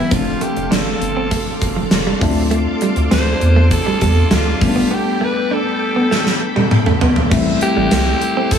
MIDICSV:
0, 0, Header, 1, 8, 480
1, 0, Start_track
1, 0, Key_signature, 0, "minor"
1, 0, Tempo, 600000
1, 93, Time_signature, 4, 2, 24, 8
1, 6869, End_track
2, 0, Start_track
2, 0, Title_t, "String machine"
2, 0, Program_c, 0, 50
2, 93, Note_on_c, 0, 69, 78
2, 93, Note_on_c, 0, 77, 75
2, 93, Note_on_c, 0, 84, 68
2, 96, Note_on_c, 0, 86, 87
2, 3661, Note_off_c, 0, 77, 0
2, 3661, Note_off_c, 0, 84, 0
2, 3695, Note_on_c, 0, 79, 71
2, 3695, Note_on_c, 0, 83, 67
2, 5821, Note_off_c, 0, 69, 0
2, 5822, Note_off_c, 0, 86, 0
2, 5832, Note_off_c, 0, 79, 0
2, 5832, Note_off_c, 0, 83, 0
2, 5855, Note_on_c, 0, 84, 75
2, 5855, Note_on_c, 0, 88, 90
2, 5856, Note_on_c, 0, 69, 82
2, 5856, Note_on_c, 0, 79, 79
2, 6869, Note_off_c, 0, 69, 0
2, 6869, Note_off_c, 0, 79, 0
2, 6869, Note_off_c, 0, 84, 0
2, 6869, Note_off_c, 0, 88, 0
2, 6869, End_track
3, 0, Start_track
3, 0, Title_t, "Alto saxophone"
3, 0, Program_c, 1, 65
3, 0, Note_on_c, 1, 64, 82
3, 103, Note_on_c, 1, 65, 86
3, 115, Note_off_c, 1, 64, 0
3, 344, Note_on_c, 1, 67, 88
3, 356, Note_off_c, 1, 65, 0
3, 578, Note_off_c, 1, 67, 0
3, 585, Note_on_c, 1, 69, 97
3, 1507, Note_off_c, 1, 69, 0
3, 2503, Note_on_c, 1, 72, 113
3, 2946, Note_off_c, 1, 72, 0
3, 2988, Note_on_c, 1, 69, 99
3, 3466, Note_on_c, 1, 65, 86
3, 3478, Note_off_c, 1, 69, 0
3, 3699, Note_off_c, 1, 65, 0
3, 3710, Note_on_c, 1, 65, 84
3, 3954, Note_on_c, 1, 67, 94
3, 3966, Note_off_c, 1, 65, 0
3, 4192, Note_on_c, 1, 71, 93
3, 4204, Note_off_c, 1, 67, 0
3, 4431, Note_on_c, 1, 69, 96
3, 4443, Note_off_c, 1, 71, 0
3, 5382, Note_off_c, 1, 69, 0
3, 6099, Note_on_c, 1, 67, 115
3, 6823, Note_on_c, 1, 69, 118
3, 6835, Note_off_c, 1, 67, 0
3, 6869, Note_off_c, 1, 69, 0
3, 6869, End_track
4, 0, Start_track
4, 0, Title_t, "Tine electric piano"
4, 0, Program_c, 2, 4
4, 0, Control_c, 2, 64, 127
4, 80, Note_on_c, 2, 53, 64
4, 87, Note_on_c, 2, 57, 53
4, 94, Note_on_c, 2, 60, 58
4, 101, Note_on_c, 2, 62, 68
4, 103, Control_c, 2, 64, 0
4, 264, Control_c, 2, 64, 127
4, 1734, Note_off_c, 2, 53, 0
4, 1738, Note_off_c, 2, 57, 0
4, 1741, Note_off_c, 2, 60, 0
4, 1745, Note_off_c, 2, 62, 0
4, 1763, Note_on_c, 2, 65, 77
4, 1770, Note_on_c, 2, 57, 71
4, 1774, Note_on_c, 2, 60, 71
4, 1782, Note_on_c, 2, 62, 85
4, 1783, Control_c, 2, 64, 0
4, 1905, Control_c, 2, 64, 127
4, 3656, Note_off_c, 2, 65, 0
4, 3659, Note_off_c, 2, 57, 0
4, 3661, Note_off_c, 2, 60, 0
4, 3665, Note_off_c, 2, 62, 0
4, 3681, Note_on_c, 2, 55, 67
4, 3688, Note_on_c, 2, 57, 59
4, 3694, Note_on_c, 2, 59, 58
4, 3700, Note_on_c, 2, 61, 60
4, 3703, Control_c, 2, 64, 0
4, 3748, Note_off_c, 2, 61, 0
4, 3753, Note_on_c, 2, 62, 74
4, 3838, Control_c, 2, 64, 127
4, 5575, Note_off_c, 2, 55, 0
4, 5578, Note_off_c, 2, 57, 0
4, 5581, Note_off_c, 2, 59, 0
4, 5611, Note_off_c, 2, 62, 0
4, 5841, Note_on_c, 2, 55, 78
4, 5849, Note_on_c, 2, 57, 72
4, 5854, Note_on_c, 2, 60, 73
4, 5861, Note_on_c, 2, 64, 85
4, 5862, Control_c, 2, 64, 0
4, 6000, Control_c, 2, 64, 127
4, 6869, Note_off_c, 2, 55, 0
4, 6869, Note_off_c, 2, 57, 0
4, 6869, Note_off_c, 2, 60, 0
4, 6869, Note_off_c, 2, 64, 0
4, 6869, End_track
5, 0, Start_track
5, 0, Title_t, "Clean electric guitar"
5, 0, Program_c, 3, 27
5, 90, Note_on_c, 3, 60, 66
5, 164, Note_off_c, 3, 60, 0
5, 331, Note_on_c, 3, 57, 65
5, 405, Note_off_c, 3, 57, 0
5, 568, Note_on_c, 3, 62, 70
5, 643, Note_off_c, 3, 62, 0
5, 934, Note_on_c, 3, 60, 75
5, 1006, Note_off_c, 3, 60, 0
5, 1050, Note_on_c, 3, 57, 84
5, 1124, Note_off_c, 3, 57, 0
5, 1411, Note_on_c, 3, 53, 67
5, 1485, Note_off_c, 3, 53, 0
5, 1655, Note_on_c, 3, 55, 68
5, 1727, Note_off_c, 3, 55, 0
5, 1773, Note_on_c, 3, 57, 70
5, 1846, Note_off_c, 3, 57, 0
5, 2008, Note_on_c, 3, 57, 81
5, 2083, Note_off_c, 3, 57, 0
5, 2255, Note_on_c, 3, 55, 75
5, 2327, Note_off_c, 3, 55, 0
5, 2489, Note_on_c, 3, 60, 82
5, 2563, Note_off_c, 3, 60, 0
5, 2850, Note_on_c, 3, 57, 74
5, 2924, Note_off_c, 3, 57, 0
5, 3091, Note_on_c, 3, 55, 71
5, 3164, Note_off_c, 3, 55, 0
5, 3212, Note_on_c, 3, 55, 73
5, 3285, Note_off_c, 3, 55, 0
5, 3448, Note_on_c, 3, 57, 72
5, 3523, Note_off_c, 3, 57, 0
5, 3807, Note_on_c, 3, 59, 74
5, 3882, Note_off_c, 3, 59, 0
5, 3928, Note_on_c, 3, 59, 68
5, 4003, Note_off_c, 3, 59, 0
5, 4168, Note_on_c, 3, 57, 72
5, 4243, Note_off_c, 3, 57, 0
5, 4409, Note_on_c, 3, 62, 73
5, 4484, Note_off_c, 3, 62, 0
5, 4769, Note_on_c, 3, 59, 74
5, 4843, Note_off_c, 3, 59, 0
5, 4890, Note_on_c, 3, 57, 89
5, 4964, Note_off_c, 3, 57, 0
5, 5248, Note_on_c, 3, 55, 71
5, 5322, Note_off_c, 3, 55, 0
5, 5492, Note_on_c, 3, 57, 72
5, 5566, Note_off_c, 3, 57, 0
5, 5614, Note_on_c, 3, 59, 73
5, 5686, Note_off_c, 3, 59, 0
5, 5852, Note_on_c, 3, 57, 78
5, 5925, Note_off_c, 3, 57, 0
5, 6216, Note_on_c, 3, 55, 77
5, 6288, Note_off_c, 3, 55, 0
5, 6337, Note_on_c, 3, 57, 81
5, 6409, Note_off_c, 3, 57, 0
5, 6696, Note_on_c, 3, 60, 86
5, 6768, Note_off_c, 3, 60, 0
5, 6869, End_track
6, 0, Start_track
6, 0, Title_t, "Analog synth bass"
6, 0, Program_c, 4, 38
6, 93, Note_on_c, 4, 29, 106
6, 273, Note_off_c, 4, 29, 0
6, 456, Note_on_c, 4, 29, 94
6, 544, Note_off_c, 4, 29, 0
6, 574, Note_on_c, 4, 31, 86
6, 754, Note_off_c, 4, 31, 0
6, 812, Note_on_c, 4, 31, 92
6, 1082, Note_off_c, 4, 31, 0
6, 1293, Note_on_c, 4, 29, 88
6, 1473, Note_off_c, 4, 29, 0
6, 1532, Note_on_c, 4, 29, 100
6, 1712, Note_off_c, 4, 29, 0
6, 1772, Note_on_c, 4, 38, 95
6, 2132, Note_off_c, 4, 38, 0
6, 2371, Note_on_c, 4, 38, 90
6, 2462, Note_off_c, 4, 38, 0
6, 2493, Note_on_c, 4, 38, 93
6, 2673, Note_off_c, 4, 38, 0
6, 2735, Note_on_c, 4, 40, 96
6, 3004, Note_off_c, 4, 40, 0
6, 3213, Note_on_c, 4, 40, 85
6, 3393, Note_off_c, 4, 40, 0
6, 3451, Note_on_c, 4, 38, 86
6, 3631, Note_off_c, 4, 38, 0
6, 3693, Note_on_c, 4, 31, 92
6, 3873, Note_off_c, 4, 31, 0
6, 5853, Note_on_c, 4, 33, 107
6, 6033, Note_off_c, 4, 33, 0
6, 6213, Note_on_c, 4, 33, 92
6, 6303, Note_off_c, 4, 33, 0
6, 6331, Note_on_c, 4, 36, 93
6, 6512, Note_off_c, 4, 36, 0
6, 6811, Note_on_c, 4, 33, 98
6, 6869, Note_off_c, 4, 33, 0
6, 6869, End_track
7, 0, Start_track
7, 0, Title_t, "Muted clean electric guitar strokes"
7, 456, Note_on_c, 9, 29, 41
7, 536, Note_off_c, 9, 29, 0
7, 696, Note_on_c, 9, 29, 43
7, 776, Note_off_c, 9, 29, 0
7, 1294, Note_on_c, 9, 29, 41
7, 1374, Note_off_c, 9, 29, 0
7, 1530, Note_on_c, 9, 29, 44
7, 1610, Note_off_c, 9, 29, 0
7, 2374, Note_on_c, 9, 29, 41
7, 2454, Note_off_c, 9, 29, 0
7, 2609, Note_on_c, 9, 29, 43
7, 2689, Note_off_c, 9, 29, 0
7, 2971, Note_on_c, 9, 29, 45
7, 3051, Note_off_c, 9, 29, 0
7, 3568, Note_on_c, 9, 29, 45
7, 3648, Note_off_c, 9, 29, 0
7, 4289, Note_on_c, 9, 29, 46
7, 4369, Note_off_c, 9, 29, 0
7, 4527, Note_on_c, 9, 29, 45
7, 4607, Note_off_c, 9, 29, 0
7, 5133, Note_on_c, 9, 29, 43
7, 5213, Note_off_c, 9, 29, 0
7, 5370, Note_on_c, 9, 29, 46
7, 5450, Note_off_c, 9, 29, 0
7, 6096, Note_on_c, 9, 29, 44
7, 6176, Note_off_c, 9, 29, 0
7, 6576, Note_on_c, 9, 29, 43
7, 6656, Note_off_c, 9, 29, 0
7, 6869, End_track
8, 0, Start_track
8, 0, Title_t, "Drums"
8, 90, Note_on_c, 9, 42, 80
8, 92, Note_on_c, 9, 36, 105
8, 170, Note_off_c, 9, 42, 0
8, 172, Note_off_c, 9, 36, 0
8, 329, Note_on_c, 9, 42, 65
8, 409, Note_off_c, 9, 42, 0
8, 452, Note_on_c, 9, 42, 46
8, 532, Note_off_c, 9, 42, 0
8, 574, Note_on_c, 9, 38, 99
8, 575, Note_on_c, 9, 42, 75
8, 654, Note_off_c, 9, 38, 0
8, 655, Note_off_c, 9, 42, 0
8, 813, Note_on_c, 9, 42, 73
8, 893, Note_off_c, 9, 42, 0
8, 1050, Note_on_c, 9, 42, 92
8, 1051, Note_on_c, 9, 36, 83
8, 1130, Note_off_c, 9, 42, 0
8, 1131, Note_off_c, 9, 36, 0
8, 1292, Note_on_c, 9, 42, 66
8, 1293, Note_on_c, 9, 36, 82
8, 1372, Note_off_c, 9, 42, 0
8, 1373, Note_off_c, 9, 36, 0
8, 1529, Note_on_c, 9, 38, 107
8, 1532, Note_on_c, 9, 42, 89
8, 1609, Note_off_c, 9, 38, 0
8, 1612, Note_off_c, 9, 42, 0
8, 1771, Note_on_c, 9, 36, 98
8, 1771, Note_on_c, 9, 46, 58
8, 1851, Note_off_c, 9, 36, 0
8, 1851, Note_off_c, 9, 46, 0
8, 2011, Note_on_c, 9, 42, 80
8, 2091, Note_off_c, 9, 42, 0
8, 2247, Note_on_c, 9, 42, 69
8, 2327, Note_off_c, 9, 42, 0
8, 2369, Note_on_c, 9, 42, 47
8, 2449, Note_off_c, 9, 42, 0
8, 2491, Note_on_c, 9, 38, 101
8, 2492, Note_on_c, 9, 42, 78
8, 2571, Note_off_c, 9, 38, 0
8, 2572, Note_off_c, 9, 42, 0
8, 2731, Note_on_c, 9, 42, 72
8, 2811, Note_off_c, 9, 42, 0
8, 2968, Note_on_c, 9, 42, 92
8, 2970, Note_on_c, 9, 36, 81
8, 3048, Note_off_c, 9, 42, 0
8, 3050, Note_off_c, 9, 36, 0
8, 3210, Note_on_c, 9, 42, 67
8, 3212, Note_on_c, 9, 36, 77
8, 3290, Note_off_c, 9, 42, 0
8, 3292, Note_off_c, 9, 36, 0
8, 3447, Note_on_c, 9, 38, 111
8, 3450, Note_on_c, 9, 42, 91
8, 3527, Note_off_c, 9, 38, 0
8, 3530, Note_off_c, 9, 42, 0
8, 3691, Note_on_c, 9, 36, 107
8, 3692, Note_on_c, 9, 46, 63
8, 3771, Note_off_c, 9, 36, 0
8, 3772, Note_off_c, 9, 46, 0
8, 4891, Note_on_c, 9, 38, 58
8, 4971, Note_off_c, 9, 38, 0
8, 5010, Note_on_c, 9, 38, 54
8, 5090, Note_off_c, 9, 38, 0
8, 5250, Note_on_c, 9, 48, 64
8, 5330, Note_off_c, 9, 48, 0
8, 5370, Note_on_c, 9, 47, 85
8, 5450, Note_off_c, 9, 47, 0
8, 5490, Note_on_c, 9, 45, 76
8, 5570, Note_off_c, 9, 45, 0
8, 5610, Note_on_c, 9, 43, 98
8, 5690, Note_off_c, 9, 43, 0
8, 5730, Note_on_c, 9, 43, 89
8, 5810, Note_off_c, 9, 43, 0
8, 5851, Note_on_c, 9, 49, 100
8, 5852, Note_on_c, 9, 36, 112
8, 5931, Note_off_c, 9, 49, 0
8, 5932, Note_off_c, 9, 36, 0
8, 6089, Note_on_c, 9, 42, 69
8, 6169, Note_off_c, 9, 42, 0
8, 6328, Note_on_c, 9, 54, 59
8, 6332, Note_on_c, 9, 38, 100
8, 6333, Note_on_c, 9, 42, 85
8, 6408, Note_off_c, 9, 54, 0
8, 6412, Note_off_c, 9, 38, 0
8, 6413, Note_off_c, 9, 42, 0
8, 6572, Note_on_c, 9, 42, 78
8, 6652, Note_off_c, 9, 42, 0
8, 6810, Note_on_c, 9, 42, 99
8, 6811, Note_on_c, 9, 36, 87
8, 6869, Note_off_c, 9, 36, 0
8, 6869, Note_off_c, 9, 42, 0
8, 6869, End_track
0, 0, End_of_file